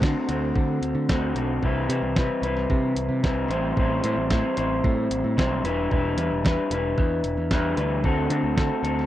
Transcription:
0.02 picked electric bass D3, clean electric guitar D3 A3 C4 F#4, kick, snare
0.29 picked electric bass D2, clean electric guitar A3 C4 F#4, closed hi-hat
0.56 picked electric bass D3, kick
0.82 picked electric bass D2, closed hi-hat
0.95 picked electric bass D3
1.09 picked electric bass D2, clean electric guitar D3 A3 C4 F#4, kick, snare
1.35 picked electric bass B1, clean electric guitar A3 C4 F#4, closed hi-hat
1.63 picked electric bass C2, clean electric guitar C3 E3 G3 C4 E4 B4, kick
1.89 picked electric bass C3, clean electric guitar G3 C4 E4 B4, closed hi-hat
2.02 picked electric bass C2
2.16 picked electric bass C3, clean electric guitar G3 C4 E4 B4, kick, snare
2.42 picked electric bass C2, clean electric guitar G3 C4 E4 B4, closed hi-hat
2.57 snare
2.70 picked electric bass C3, kick
2.96 picked electric bass C2, closed hi-hat
3.09 picked electric bass C3
3.23 picked electric bass C2, clean electric guitar C3 E3 G3 C4 E4 B4, kick, snare
3.48 picked electric bass A1, clean electric guitar A2 E3 G3 C4 E4 C5, closed hi-hat
3.77 picked electric bass A1, clean electric guitar A2 E3 G3 C4 E4 C5, kick
4.04 picked electric bass A2, clean electric guitar G3 C4 E4 C5, closed hi-hat
4.16 picked electric bass A1
4.30 picked electric bass A2, clean electric guitar G3 C4 E4 C5, kick, snare
4.57 picked electric bass A1, clean electric guitar G3 C4 E4 C5, closed hi-hat
4.84 picked electric bass A2, kick
5.11 picked electric bass A1, closed hi-hat
5.24 picked electric bass A2
5.37 picked electric bass B1, clean electric guitar A2 E3 G3 C4 E4 C5, kick, snare
5.64 picked electric bass E1, clean electric guitar E3 G3 D4 E4 B4, closed hi-hat
5.90 picked electric bass E1, clean electric guitar E3 G3 D4 E4 B4, kick
6.17 picked electric bass E2, clean electric guitar D4 E4 B4, closed hi-hat
6.31 picked electric bass E1
6.45 picked electric bass E2, clean electric guitar G3 D4 E4 B4, kick, snare
6.71 picked electric bass E1, clean electric guitar D4 E4 B4, snare, closed hi-hat
6.98 picked electric bass E2, kick
7.24 picked electric bass E1, closed hi-hat
7.37 picked electric bass E2
7.51 picked electric bass E2, clean electric guitar E3 G3 D4 E4 B4, kick, snare
7.77 picked electric bass D2, clean electric guitar D4 E4 B4, closed hi-hat
8.04 picked electric bass D2, clean electric guitar D3 A3 C4 F#4 A4, kick
8.30 picked electric bass D3, clean electric guitar C4 F#4 A4, closed hi-hat
8.43 picked electric bass D2
8.56 picked electric bass D3, clean electric guitar A3 C4 F#4 A4, kick, snare
8.83 picked electric bass D2, clean electric guitar C4 F#4 A4, closed hi-hat
8.99 snare

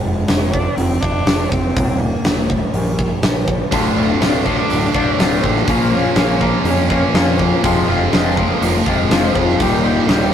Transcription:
0.03 fingered electric bass F1, cello G#3
0.28 fingered electric bass F1, snare, open hi-hat
0.52 cello D4, kick
0.75 fingered electric bass F1, cello C4, open hi-hat
1.01 fingered electric bass F1, cello D4, kick
1.27 fingered electric bass F1, snare, open hi-hat
1.50 fingered electric bass F1, cello C4, kick
1.76 fingered electric bass D#1, kick, open hi-hat
2.01 cello A#3
2.25 fingered electric bass D#1, snare, open hi-hat
2.48 cello A3, kick
2.73 fingered electric bass A#1, cello G3, open hi-hat
2.99 kick
3.23 fingered electric bass A#1, snare, open hi-hat
3.48 kick
3.71 fingered electric bass D1, clean electric guitar D2 A2 D3 A3 F4, overdriven electric guitar D2 A2 D3, cello A3, kick, open hi-hat
3.96 fingered electric bass D1, overdriven electric guitar D2 A2 D3, clean electric guitar D3 A3 F4
4.09 cello C4
4.20 fingered electric bass D1, overdriven electric guitar D2 A2 D3, clean electric guitar A2 D3 A3 F4, snare, open hi-hat
4.44 overdriven electric guitar D2 A2 D3, clean electric guitar A3 F4, cello D4, kick
4.49 clean electric guitar D3
4.69 fingered electric bass D1, overdriven electric guitar D2 A2 D3, open hi-hat
4.94 fingered electric bass D1, overdriven electric guitar D2 A2 D3, clean electric guitar D3 A3 F4, cello D4, kick
5.17 fingered electric bass D1, overdriven electric guitar D2 A2 D3, clean electric guitar D2 A2, cello C4, snare, open hi-hat
5.21 clean electric guitar D3 A3 F4
5.41 fingered electric bass A1, overdriven electric guitar D2 A2 D3, cello A#3, kick
5.56 snare
5.66 fingered electric bass A#1, overdriven electric guitar A#2 F3 A#3, clean electric guitar A#2 F3 A#3 C#4, kick, open hi-hat
5.70 clean electric guitar F4 A#4
5.90 overdriven electric guitar A#2 F3 A#3, clean electric guitar A#3 C#4 F4 A#4, cello C#4
6.15 fingered electric bass A#1, overdriven electric guitar A#2 F3 A#3, clean electric guitar A#3 C#4 F4 A#4, snare, open hi-hat
6.39 overdriven electric guitar A#2 F3 A#3, clean electric guitar A#3 C#4 F4 A#4, kick
6.64 fingered electric bass F2, overdriven electric guitar A#2 F3 A#3, cello C#4, open hi-hat
6.88 overdriven electric guitar A#2 F3 A#3, clean electric guitar A#3 C#4 F4 A#4, cello C#4, kick
7.13 fingered electric bass F2, clean electric guitar A#2 F3 A#3 C#4 F4 A#4, overdriven electric guitar A#2 F3 A#3, cello C#4, snare, open hi-hat
7.39 overdriven electric guitar A#2 F3 A#3, kick
7.62 fingered electric bass F1, overdriven electric guitar F2 C3 F3, clean electric guitar F2 C3 F3 G#3 C4 F4, cello F3, kick, open hi-hat
7.87 fingered electric bass F1, overdriven electric guitar F2 C3 F3, clean electric guitar F3 G#3 C4 F4
7.92 cello F3
8.10 fingered electric bass F1, overdriven electric guitar F2 C3 F3, clean electric guitar F3 G#3 C4, snare, open hi-hat
8.15 clean electric guitar F4
8.35 overdriven electric guitar F2 C3 F3, clean electric guitar F3 G#3 C4 F4, kick
8.41 cello A#3
8.59 fingered electric bass F1, overdriven electric guitar F2 C3 F3, open hi-hat
8.84 fingered electric bass F1, overdriven electric guitar F2 C3 F3, clean electric guitar G#3 C4 F4, kick
8.89 clean electric guitar F3, cello G#3
9.08 fingered electric bass F1, overdriven electric guitar F2 C3 F3, clean electric guitar F2 C3 F3, snare, open hi-hat
9.13 clean electric guitar G#3 C4 F4
9.34 fingered electric bass F1, overdriven electric guitar F2 C3 F3, cello F3, kick
9.49 snare
9.58 fingered electric bass D#1, overdriven electric guitar D#2 A#2 D#3, clean electric guitar D#2 A#2, kick, open hi-hat
9.62 clean electric guitar D#3 G3 G4, cello G3
9.83 overdriven electric guitar D#2 A#2 D#3, clean electric guitar G3 G4
9.87 clean electric guitar D#3
10.07 fingered electric bass D#1, overdriven electric guitar D#2 A#2 D#3, clean electric guitar A#2 D#3 G3, snare, open hi-hat
10.11 clean electric guitar G4

